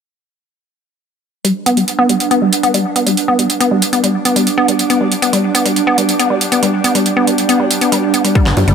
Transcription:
1.45 synth arpeggio sound G3, analog synth pad G3, ambient pad D4, closed hi-hat
1.66 synth arpeggio sound B3, closed hi-hat
1.76 synth arpeggio sound G3, analog synth pad G4, closed hi-hat
1.88 analog synth pad D5, closed hi-hat
1.99 synth arpeggio sound B3
2.09 synth arpeggio sound G3, closed hi-hat
2.20 closed hi-hat
2.31 synth arpeggio sound B3, closed hi-hat
2.42 synth arpeggio sound G3
2.53 closed hi-hat
2.63 synth arpeggio sound B3, closed hi-hat
2.74 synth arpeggio sound G3, closed hi-hat
2.93 synth arpeggio sound B3, analog synth pad D6, closed hi-hat
3.07 synth arpeggio sound G3, closed hi-hat
3.17 closed hi-hat
3.28 synth arpeggio sound B3
3.39 synth arpeggio sound G3, closed hi-hat
3.50 closed hi-hat
3.60 synth arpeggio sound B3, closed hi-hat
3.71 synth arpeggio sound G3
3.82 closed hi-hat
3.93 synth arpeggio sound B3, closed hi-hat
4.04 synth arpeggio sound G3, closed hi-hat
4.25 synth arpeggio sound B3, closed hi-hat
4.36 synth arpeggio sound G3, closed hi-hat
4.47 closed hi-hat
4.58 synth arpeggio sound B3
4.68 synth arpeggio sound G3, closed hi-hat
4.79 closed hi-hat
4.90 synth arpeggio sound B3, closed hi-hat
5.01 synth arpeggio sound G3
5.12 closed hi-hat
5.22 synth arpeggio sound B3, closed hi-hat
5.33 synth arpeggio sound G3, closed hi-hat
5.55 synth arpeggio sound B3, closed hi-hat
5.66 synth arpeggio sound G3, closed hi-hat
5.76 closed hi-hat
5.87 synth arpeggio sound B3
5.98 synth arpeggio sound G3, closed hi-hat
6.09 closed hi-hat
6.19 synth arpeggio sound B3, closed hi-hat
6.30 synth arpeggio sound G3
6.41 closed hi-hat
6.52 synth arpeggio sound B3, closed hi-hat
6.63 synth arpeggio sound G3, closed hi-hat
6.84 synth arpeggio sound B3, closed hi-hat
6.95 synth arpeggio sound G3, closed hi-hat
7.06 closed hi-hat
7.17 synth arpeggio sound B3
7.27 synth arpeggio sound G3, closed hi-hat
7.38 closed hi-hat
7.49 synth arpeggio sound B3, closed hi-hat
7.60 synth arpeggio sound G3
7.71 closed hi-hat
7.81 synth arpeggio sound B3, closed hi-hat
7.92 synth arpeggio sound G3, closed hi-hat
8.14 synth arpeggio sound B3, closed hi-hat
8.25 synth arpeggio sound G3, closed hi-hat
8.35 synth arpeggio sound G3, kick, closed hi-hat
8.46 analog synth bass G1, synth arpeggio sound B3, clap
8.57 analog synth bass G2, synth arpeggio sound G3, closed hi-hat, high bongo
8.68 analog synth bass G1, synth arpeggio sound G3, closed hi-hat

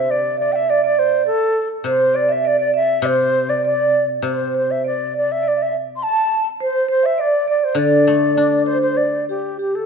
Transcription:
Already playing: guzheng C3 D3, xiao E5
0.10 xiao D5, vibraphone D5
0.38 xiao D5, vibraphone E5
0.42 vibraphone D5
0.52 xiao E5 G5, vibraphone E5
0.66 xiao D5, vibraphone D5 E5
0.84 vibraphone D5, xiao D5
0.99 xiao C5
1.26 vibraphone A4, xiao A4
1.84 guzheng C3, vibraphone C5, xiao C5
2.14 vibraphone D5, xiao D5
2.29 vibraphone E5, xiao E5
2.45 vibraphone D5, xiao D5
2.59 vibraphone D5, xiao D5
2.74 vibraphone E5, xiao E5
3.02 guzheng C3, vibraphone C5, xiao C5
3.49 vibraphone D5, xiao D5
3.65 vibraphone D5, xiao D5
4.22 guzheng C3, vibraphone C5
4.28 xiao C5, vibraphone C5
4.39 vibraphone C5
4.48 vibraphone C5
4.55 vibraphone C5, xiao C5
4.62 vibraphone C5
4.70 vibraphone C5, xiao E5
4.84 vibraphone D5, xiao D5
5.18 xiao D5
5.32 xiao E5
5.43 vibraphone D5
5.48 xiao D5
5.57 vibraphone E5
5.62 xiao E5
5.96 xiao C6
6.02 vibraphone A5, xiao A5
6.60 vibraphone C5, xiao C5
6.89 vibraphone C5, xiao C5
7.03 vibraphone E5, xiao E5
7.18 vibraphone D5, xiao D5
7.47 vibraphone D5, xiao D5
7.59 xiao D5
7.64 xiao C5
7.75 guzheng D3, vibraphone D5, xiao D5
8.07 guzheng A3
8.37 guzheng D4
8.66 xiao C5, vibraphone C5
8.83 xiao C5, vibraphone C5
8.97 xiao D5, vibraphone D5
9.29 vibraphone G4, xiao G4
9.59 vibraphone G4, xiao G4
9.75 vibraphone A4, xiao A4

